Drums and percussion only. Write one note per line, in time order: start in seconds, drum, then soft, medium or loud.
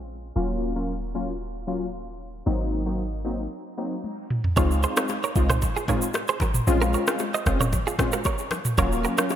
4.04 high tom medium
4.30 mid tom medium
4.44 floor tom medium
4.57 kick loud
4.57 low conga medium
4.57 shaker medium
4.71 shaker medium
4.83 shaker medium
4.97 cross-stick loud
4.97 low bongo medium
4.97 shaker medium
5.08 high bongo medium
5.08 shaker medium
5.24 shaker medium
5.36 kick medium
5.36 shaker medium
5.50 cross-stick loud
5.50 mid tom loud
5.50 shaker medium
5.62 kick medium
5.62 low conga medium
5.62 shaker medium
5.77 shaker medium
5.88 kick loud
5.88 mid tom medium
5.88 low bongo medium
5.88 shaker medium
6.02 shaker loud
6.14 cross-stick loud
6.14 high bongo medium
6.14 shaker medium
6.28 shaker medium
6.40 low bongo medium
6.40 low conga medium
6.40 shaker soft
6.54 mid tom loud
6.54 shaker loud
6.67 low conga medium
6.67 shaker medium
6.82 shaker soft
6.94 shaker medium
7.07 cross-stick loud
7.07 low bongo medium
7.07 shaker loud
7.19 high bongo medium
7.19 shaker medium
7.34 shaker medium
7.46 kick medium
7.46 cross-stick medium
7.46 shaker medium
7.60 mid tom loud
7.60 shaker medium
7.73 kick loud
7.73 low conga medium
7.73 shaker medium
7.87 shaker medium
7.99 kick loud
7.99 cross-stick loud
7.99 mid tom medium
7.99 low bongo medium
7.99 shaker medium
8.12 shaker loud
8.24 kick medium
8.24 high bongo medium
8.24 shaker medium
8.38 shaker medium
8.51 cross-stick medium
8.51 low bongo medium
8.51 low conga medium
8.51 shaker soft
8.65 mid tom loud
8.65 shaker medium
8.78 kick loud
8.78 low conga medium
8.78 shaker medium
8.92 shaker medium
9.04 shaker medium
9.18 cross-stick loud
9.18 low bongo medium
9.18 shaker loud
9.30 high bongo medium
9.30 shaker medium